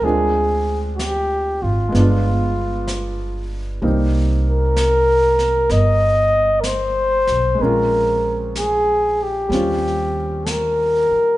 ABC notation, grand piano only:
X:1
M:4/4
L:1/8
Q:"Swing" 1/4=63
K:Cm
V:1 name="Grand piano"
[A,CDF]4 [A,=B,DF]4 | [G,B,CE]8 | [A,C_DF]4 [G,CDF]4 |]